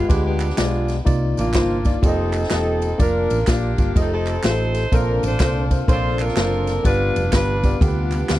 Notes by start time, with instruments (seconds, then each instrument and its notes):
Already playing: saxophone section G#3
0.08 fingered electric bass D2, tine electric piano G#3 F4 G4 B4, saxophone section B3 D4 G4, kick, ride bell, tambourine
0.25 saxophone section B3 D4 G4
0.40 clap, ride bell, tambourine
0.50 snare
0.57 fingered electric bass B1, tine electric piano G#3 F4 G4 D5, saxophone section G#3 B3 F4, snare, clap, ride bell, tambourine
0.88 snare, ride bell, tambourine
1.05 fingered electric bass C2, tine electric piano C3 A#3 D#4 F4 D5, kick, ride bell, tambourine
1.37 fingered electric bass A1, saxophone section A#3 D4 F4, ride bell, tambourine
1.53 fingered electric bass G1, tine electric piano A#3 D#4 F4 C5, kick, snare, clap, ride bell, tambourine
1.84 tine electric piano A#3 D#4 F4 D5, kick, ride bell, tambourine
2.02 fingered electric bass F1, tine electric piano A#3 F4 G4 D5, saxophone section C4 D#4 A4, kick, ride bell, tambourine
2.09 tine electric piano D#5
2.33 clap, ride bell, tambourine
2.43 snare
2.50 fingered electric bass E1, tine electric piano A#3 F4 G4 D#5, saxophone section C4 D#4 A4, snare, clap, ride bell, tambourine
2.82 ride bell, tambourine
2.98 fingered electric bass F1, tine electric piano A#3 D4 F4 D5, saxophone section D4 F4 A#4, kick, ride bell, tambourine
3.30 fingered electric bass A1, ride bell, tambourine
3.47 fingered electric bass A#1, tine electric piano A#3 D4 F4 D5, saxophone section A#3 D4 G4, kick, snare, clap, ride bell, tambourine
3.78 fingered electric bass G1, tine electric piano A#3 D4 F4 F5, kick, ride bell, tambourine
3.95 fingered electric bass F1, tine electric piano A3 F4 G4 D#5, saxophone section C4 D#4 A4, kick, ride bell, tambourine
4.13 saxophone section C4 D#4 A4
4.27 clap, ride bell, tambourine
4.43 fingered electric bass A1, tine electric piano A3 F4 G4 G#4, saxophone section D#4 A4 C5, snare, clap, ride bell, tambourine
4.50 tine electric piano A4
4.75 snare, ride bell, tambourine
4.92 fingered electric bass A#1, tine electric piano A#2 A#3 D4 A4 C5, tonewheel organ C3 A#3 C4 C5, saxophone section D4 F4 A#4, kick, ride bell, tambourine
5.23 fingered electric bass A1, saxophone section F4 A4 C5, ride bell, tambourine
5.39 fingered electric bass C2, tine electric piano A#3 D4 A4 C5, kick, snare, clap, ride bell, tambourine
5.70 tine electric piano A#3 D4 A4 C5, kick, ride bell, tambourine
5.88 fingered electric bass A#1, tine electric piano A#3 D4 A4 C#5, saxophone section F4 A4 C5, kick, ride bell, tambourine
5.95 tine electric piano D5
6.19 saxophone section D4 F4 A#4, clap, ride bell, tambourine
6.28 snare
6.36 fingered electric bass F#1, tine electric piano A#3 D4 C5 A5, snare, clap, ride bell, tambourine
6.67 snare, ride bell, tambourine
6.84 fingered electric bass G1, tine electric piano G2 B3 F4 G4 D5, tonewheel organ G3 B3 F4, saxophone section D4 F4 B4, kick, ride bell, tambourine
7.16 fingered electric bass F1, ride bell, tambourine
7.32 fingered electric bass G1, tine electric piano B3 F4 G4 B4, saxophone section D4 F4 B4, kick, snare, clap, ride bell, tambourine
7.63 tine electric piano B3 F4 G4 D5, kick, ride bell, tambourine
7.81 fingered electric bass D2, tine electric piano B3 F4 G4 A4, saxophone section B3 D4 G4, kick, ride bell, tambourine
7.88 tine electric piano B4
8.12 clap, ride bell, tambourine
8.28 fingered electric bass D2, tine electric piano B3 F4 G4 F5, snare, clap, ride bell, tambourine